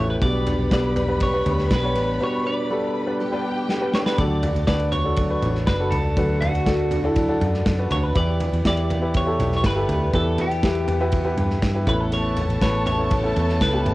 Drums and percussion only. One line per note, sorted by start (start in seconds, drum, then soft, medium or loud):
0.22 kick loud
0.22 ride medium
0.46 floor tom medium
0.46 ride medium
0.71 kick loud
0.71 snare loud
0.71 ride medium
0.96 floor tom medium
0.96 ride medium
1.20 kick loud
1.20 ride medium
1.46 floor tom medium
1.46 ride medium
1.58 snare soft
1.71 kick loud
1.71 snare loud
1.71 ride medium
1.95 ride medium
3.69 snare medium
3.93 snare medium
4.06 snare medium
4.18 kick loud
4.18 ride medium
4.43 floor tom medium
4.43 ride medium
4.56 ride soft
4.67 kick loud
4.67 snare loud
4.67 ride medium
4.79 ride soft
4.92 floor tom medium
4.92 ride medium
5.16 kick medium
5.16 ride medium
5.42 floor tom medium
5.42 ride medium
5.55 snare soft
5.67 kick loud
5.67 snare loud
5.67 ride medium
5.92 floor tom medium
5.92 ride medium
6.17 kick loud
6.17 ride medium
6.42 floor tom medium
6.42 ride medium
6.55 ride soft
6.66 kick loud
6.66 snare loud
6.66 ride medium
6.91 floor tom medium
6.91 ride medium
7.16 kick loud
7.16 ride medium
7.41 floor tom medium
7.41 ride medium
7.54 snare soft
7.66 kick loud
7.66 snare loud
7.66 ride medium
7.91 floor tom medium
7.91 ride medium
8.15 kick loud
8.15 ride medium
8.40 floor tom medium
8.40 ride medium
8.53 ride soft
8.65 kick medium
8.65 snare loud
8.65 ride medium
8.77 ride soft
8.90 floor tom medium
8.90 ride medium
9.14 kick loud
9.14 ride medium
9.40 floor tom medium
9.40 ride medium
9.52 snare soft
9.64 kick loud
9.64 snare loud
9.64 ride medium
9.89 floor tom medium
9.89 ride medium
10.13 kick loud
10.13 ride medium
10.38 floor tom medium
10.38 ride medium
10.51 ride soft
10.63 kick loud
10.63 snare loud
10.63 ride medium
10.75 ride soft
10.88 floor tom medium
10.88 ride medium
11.12 kick loud
11.12 ride medium
11.38 floor tom medium
11.38 ride medium
11.50 snare soft
11.62 kick loud
11.62 snare loud
11.62 ride medium
11.87 kick loud
11.87 floor tom medium
11.87 ride medium
12.12 ride medium
12.37 floor tom medium
12.37 ride medium
12.50 ride soft
12.62 kick medium
12.62 snare loud
12.62 ride medium
12.86 floor tom medium
12.86 ride medium
13.11 kick loud
13.11 ride medium
13.36 floor tom medium
13.36 ride medium
13.49 snare soft
13.61 kick loud
13.61 snare loud
13.61 ride medium
13.86 floor tom medium
13.86 ride medium